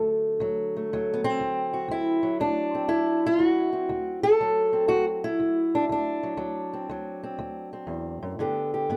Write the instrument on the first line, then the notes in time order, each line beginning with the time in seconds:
steel-string acoustic guitar
Already playing: D2 D3 F#3 A3
0.40 D2 F#3
0.77 A3
0.93 D2 F#3
1.14 B3
1.24 C4
1.40 D2
1.73 F#4
1.88 D2 E4
2.23 F#3
2.40 D2 D4
2.75 C4
2.88 D2 E4
3.26 F4
3.39 D2
3.46 F#4
3.73 C4
3.89 D2
4.23 A4
4.41 D2 F#3
4.73 C4
4.88 D2 F#4
5.24 E4
5.39 D2
5.75 D4
5.89 D2 D4
6.23 F#3
6.37 D2 F#3
6.73 C4
6.89 D2 F#3
7.23 C4
7.39 D2
7.73 C4
7.87 E2
8.23 F#2
8.39 G2 D3 B3 G4
8.74 G4
8.90 G2 B3